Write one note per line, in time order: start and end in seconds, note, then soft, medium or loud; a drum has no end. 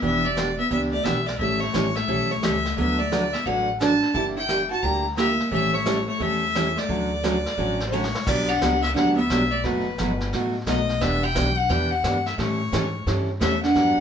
0.02 0.57 E1 medium
0.02 0.24 E3 medium
0.02 0.25 B3 medium
0.02 0.26 B3 medium
0.02 0.25 D4 medium
0.02 0.25 G4 medium
0.02 0.27 E5 medium
0.02 brush sweep soft
0.02 kick soft
0.25 0.59 G3 medium
0.25 0.58 D5 medium
0.37 0.48 E3 medium
0.37 0.49 B3 medium
0.37 0.49 D4 medium
0.37 0.49 G4 medium
0.37 snare medium
0.37 hi-hat pedal medium
0.59 0.70 B3 medium
0.59 0.70 E5 medium
0.71 1.00 C#2 medium
0.71 0.93 E3 medium
0.71 0.77 B3 medium
0.71 0.93 B3 medium
0.71 0.93 D4 medium
0.71 0.93 G4 medium
0.71 0.81 E5 medium
0.71 brush sweep medium
0.71 kick soft
0.92 1.06 A3 medium
0.92 1.06 D5 medium
1.04 1.35 B1 medium
1.04 1.17 E3 medium
1.04 1.17 B3 medium
1.04 1.28 B3 medium
1.04 1.17 D4 medium
1.04 1.17 G4 medium
1.04 1.28 E5 medium
1.04 snare medium
1.04 hi-hat pedal medium
1.27 1.40 A3 medium
1.27 1.37 D5 medium
1.27 snare soft
1.38 1.67 A1 medium
1.38 1.62 E3 medium
1.38 1.62 G3 medium
1.38 1.61 A3 medium
1.38 1.62 C#4 medium
1.38 1.63 E4 medium
1.38 1.63 A4 medium
1.38 1.62 E5 loud
1.38 brush sweep soft
1.38 kick soft
1.60 1.96 A3 medium
1.60 1.97 C#5 medium
1.74 2.03 A1 medium
1.74 1.86 E3 medium
1.74 1.86 G3 medium
1.74 1.86 C#4 medium
1.74 1.86 E4 medium
1.74 1.86 A4 medium
1.74 snare medium
1.74 hi-hat pedal medium
1.95 2.30 A3 medium
1.95 2.33 E5 loud
1.95 snare soft
2.08 2.38 B1 medium
2.08 2.30 E3 medium
2.08 2.30 G3 medium
2.08 2.30 C#4 medium
2.08 2.31 E4 medium
2.08 2.31 A4 medium
2.08 brush sweep soft
2.08 kick soft
2.31 2.42 A3 medium
2.31 2.45 C#5 medium
2.43 2.72 C#2 medium
2.43 2.55 E3 medium
2.43 2.55 G3 medium
2.43 2.77 A3 medium
2.43 2.55 C#4 medium
2.43 2.55 E4 medium
2.43 2.55 A4 medium
2.43 2.77 E5 medium
2.43 snare medium
2.43 hi-hat pedal medium
2.65 snare soft
2.77 3.32 D2 medium
2.77 2.99 D3 soft
2.77 2.99 F#3 medium
2.77 3.00 A3 medium
2.77 3.00 B3 medium
2.77 3.00 D4 medium
2.77 3.00 F#4 medium
2.77 3.00 B4 medium
2.77 3.00 E5 medium
2.77 brush sweep soft
2.77 kick soft
2.99 3.34 A3 medium
2.99 3.34 D5 medium
3.11 3.23 D3 medium
3.11 3.23 F#3 medium
3.11 3.23 A3 medium
3.11 3.23 D4 medium
3.11 3.24 F#4 medium
3.11 3.24 B4 medium
3.11 snare medium
3.11 hi-hat pedal medium
3.33 3.47 B3 medium
3.33 3.47 E5 medium
3.33 snare soft
3.46 4.01 A1 medium
3.46 3.68 D3 medium
3.46 3.68 F#3 medium
3.46 3.68 A3 medium
3.46 3.69 D4 medium
3.46 3.68 D4 medium
3.46 3.68 F#4 medium
3.46 3.69 B4 medium
3.46 3.68 F#5 medium
3.46 brush sweep soft
3.46 kick soft
3.80 3.92 D3 medium
3.80 3.92 F#3 medium
3.80 3.92 A3 medium
3.80 4.13 D4 medium
3.80 3.92 D4 medium
3.80 3.93 F#4 medium
3.80 3.93 B4 medium
3.80 4.12 A5 loud
3.80 snare medium
3.80 hi-hat pedal soft
4.02 snare soft
4.14 4.70 G1 medium
4.14 4.37 D3 medium
4.14 4.36 G3 medium
4.14 4.37 A#3 medium
4.14 4.21 E4 medium
4.14 4.37 E4 medium
4.14 4.37 G4 medium
4.14 4.24 A5 loud
4.14 brush sweep medium
4.14 kick soft
4.37 4.69 E4 medium
4.37 4.69 G5 loud
4.48 4.60 D3 medium
4.48 4.61 G3 medium
4.48 4.60 A#3 medium
4.48 4.61 E4 medium
4.48 4.61 G4 medium
4.48 snare medium
4.48 hi-hat pedal medium
4.71 4.84 F#4 medium
4.71 4.84 A5 medium
4.83 5.38 D2 medium
4.83 5.05 D3 medium
4.83 5.05 G3 medium
4.83 5.06 A#3 medium
4.83 5.06 E4 medium
4.83 5.06 G4 medium
4.83 5.05 A#5 medium
4.83 brush sweep soft
4.83 kick soft
5.17 5.29 D3 medium
5.17 5.29 G3 medium
5.17 5.50 A#3 medium
5.17 5.29 A#3 medium
5.17 5.29 E4 medium
5.17 5.30 G4 medium
5.17 5.49 E5 medium
5.17 snare medium
5.17 hi-hat pedal medium
5.40 snare soft
5.51 6.07 A1 medium
5.51 5.74 E3 medium
5.51 5.74 G3 medium
5.51 5.72 A3 medium
5.51 5.74 C#4 medium
5.51 5.74 E4 medium
5.51 5.74 A4 medium
5.51 5.76 E5 loud
5.51 brush sweep soft
5.51 kick soft
5.74 6.07 A3 medium
5.74 6.08 C#5 medium
5.85 5.98 E3 medium
5.85 5.98 G3 medium
5.85 5.98 C#4 medium
5.85 5.98 E4 medium
5.85 5.98 A4 medium
5.85 snare medium
5.85 hi-hat pedal medium
6.08 6.19 A3 medium
6.08 6.23 C#5 medium
6.20 6.75 E2 medium
6.20 6.43 E3 medium
6.20 6.43 G3 medium
6.20 6.75 A3 medium
6.20 6.43 C#4 medium
6.20 6.43 E4 medium
6.20 6.43 A4 medium
6.20 6.80 E5 loud
6.20 brush sweep soft
6.20 kick soft
6.55 6.67 E3 medium
6.55 6.67 G3 medium
6.55 6.67 C#4 medium
6.55 6.67 E4 medium
6.55 6.67 A4 medium
6.55 snare medium
6.55 hi-hat pedal medium
6.76 7.87 A3 medium
6.76 7.88 D5 medium
6.76 snare soft
6.89 7.44 D2 medium
6.89 7.11 D3 medium
6.89 7.11 F#3 medium
6.89 7.11 A3 medium
6.89 7.12 C#4 medium
6.89 7.12 F#4 medium
6.89 brush sweep soft
6.89 kick soft
7.23 7.35 D3 medium
7.23 7.35 F#3 medium
7.23 7.35 A3 medium
7.23 7.36 C#4 medium
7.23 7.36 F#4 medium
7.23 snare medium
7.23 hi-hat pedal medium
7.46 snare soft
7.58 8.13 A1 medium
7.58 7.80 D3 medium
7.58 7.80 F#3 medium
7.58 7.80 A3 medium
7.58 7.80 C#4 medium
7.58 7.81 F#4 medium
7.58 brush sweep soft
7.58 kick soft
7.80 snare medium
7.87 7.93 G3 medium
7.87 7.94 C5 medium
7.92 8.04 D3 medium
7.92 8.04 F#3 medium
7.92 8.04 A3 medium
7.92 8.27 A3 medium
7.92 8.04 C#4 medium
7.92 8.04 F#4 medium
7.92 8.29 C#5 medium
7.92 hi-hat pedal medium
8.04 snare medium
8.15 snare medium
8.27 8.60 B1 medium
8.27 8.49 D3 medium
8.27 8.49 F#3 medium
8.27 8.49 G3 medium
8.27 8.49 B3 medium
8.27 8.49 D4 medium
8.27 8.50 G4 medium
8.27 8.50 D5 loud
8.27 brush sweep soft
8.27 kick medium
8.27 snare soft
8.27 crash medium
8.49 8.82 D4 medium
8.49 8.84 F#5 loud
8.61 8.95 C#2 medium
8.61 8.73 D3 medium
8.61 8.73 F#3 medium
8.61 8.74 B3 medium
8.61 8.73 D4 medium
8.61 8.74 G4 medium
8.61 kick soft
8.61 snare medium
8.61 hi-hat pedal medium
8.82 8.94 B3 medium
8.82 8.94 E5 loud
8.82 snare soft
8.94 9.29 D2 medium
8.94 9.18 D3 medium
8.94 9.18 F#3 medium
8.94 9.18 B3 medium
8.94 9.15 D4 medium
8.94 9.18 D4 medium
8.94 9.18 G4 medium
8.94 9.16 F#5 medium
8.94 brush sweep soft
8.94 kick soft
8.94 snare soft
9.17 9.52 B3 medium
9.17 9.53 E5 medium
9.30 9.63 B1 loud
9.30 9.42 D3 medium
9.30 9.42 F#3 medium
9.30 9.42 B3 medium
9.30 9.42 D4 medium
9.30 9.42 G4 medium
9.30 kick soft
9.30 snare medium
9.30 hi-hat pedal medium
9.51 9.64 A3 medium
9.51 9.66 D5 medium
9.64 9.97 F#1 medium
9.64 9.86 B2 medium
9.64 10.33 F#3 medium
9.64 9.86 F#3 medium
9.64 9.86 A3 medium
9.64 9.86 D#4 medium
9.64 9.87 F#4 medium
9.64 10.33 B4 medium
9.64 brush sweep medium
9.64 kick soft
9.64 snare soft
9.98 10.32 G1 medium
9.98 10.10 B2 medium
9.98 10.11 F#3 medium
9.98 10.11 A3 medium
9.98 10.11 D#4 medium
9.98 10.11 F#4 medium
9.98 kick soft
9.98 snare medium
9.98 hi-hat pedal medium
10.20 snare soft
10.33 10.66 A1 medium
10.33 10.55 B2 medium
10.33 10.55 F#3 medium
10.33 10.55 A3 medium
10.33 10.55 D#4 medium
10.33 10.55 F#4 medium
10.33 brush sweep medium
10.33 kick soft
10.33 snare soft
10.67 11.00 B1 loud
10.67 10.78 B2 medium
10.67 10.79 F#3 medium
10.67 11.01 A3 medium
10.67 10.79 A3 medium
10.67 10.79 D#4 medium
10.67 10.79 F#4 medium
10.67 11.03 D#5 medium
10.67 kick soft
10.67 snare medium
10.67 hi-hat pedal medium
10.89 snare soft
11.00 11.35 E1 medium
11.00 11.23 E3 medium
11.00 11.23 B3 medium
11.00 11.24 B3 medium
11.00 11.23 D4 medium
11.00 11.23 G4 medium
11.00 11.25 E5 loud
11.00 brush sweep medium
11.00 kick soft
11.00 snare soft
11.24 11.58 E4 medium
11.24 11.59 G5 loud
11.35 11.69 B1 loud
11.35 11.47 E3 medium
11.35 11.47 B3 medium
11.35 11.48 D4 medium
11.35 11.48 G4 medium
11.35 kick soft
11.35 snare medium
11.35 hi-hat pedal medium
11.57 11.70 D4 medium
11.57 11.71 F#5 loud
11.69 12.03 E2 medium
11.69 11.91 E3 medium
11.69 11.92 B3 medium
11.69 11.92 D4 medium
11.69 11.93 E4 medium
11.69 11.92 G4 medium
11.69 11.92 G5 loud
11.69 brush sweep soft
11.69 kick soft
11.69 snare soft
11.90 12.26 D4 medium
11.90 12.28 F#5 medium
12.03 12.37 G2 medium
12.03 12.16 E3 medium
12.03 12.16 B3 medium
12.03 12.16 D4 medium
12.03 12.17 G4 medium
12.03 kick soft
12.03 snare medium
12.03 hi-hat pedal medium
12.26 12.38 B3 medium
12.26 12.39 E5 medium
12.26 snare soft
12.38 12.72 A2 medium
12.38 12.60 E3 medium
12.38 12.60 G3 medium
12.38 13.03 A3 medium
12.38 12.60 C#4 medium
12.38 12.60 E4 medium
12.38 12.61 A4 medium
12.38 13.03 C#5 medium
12.38 brush sweep medium
12.38 kick soft
12.38 snare soft
12.72 13.06 G#2 medium
12.72 12.84 E3 medium
12.72 12.84 G3 medium
12.72 12.84 C#4 medium
12.72 12.84 E4 medium
12.72 12.85 A4 medium
12.72 kick soft
12.72 snare medium
12.72 hi-hat pedal medium
13.07 13.40 G2 medium
13.07 13.29 E3 medium
13.07 13.29 G3 medium
13.07 13.29 C#4 medium
13.07 13.29 E4 medium
13.07 13.29 A4 medium
13.07 brush sweep medium
13.07 kick soft
13.07 snare soft
13.40 13.74 E2 loud
13.40 13.53 E3 medium
13.40 13.53 G3 medium
13.40 13.61 A3 medium
13.40 13.53 C#4 medium
13.40 13.53 E4 medium
13.40 13.53 A4 medium
13.40 13.61 E5 medium
13.40 kick soft
13.40 snare medium
13.40 hi-hat pedal medium
13.62 14.00 D4 medium
13.62 14.00 F#5 loud
13.62 snare soft
13.75 13.96 G2 medium
13.75 13.97 D3 medium
13.75 13.97 F#3 medium
13.75 13.97 B3 medium
13.75 13.97 D4 medium
13.75 13.98 G4 medium
13.75 brush sweep medium
13.75 kick soft
13.75 snare soft
13.97 muted upright bass stroke soft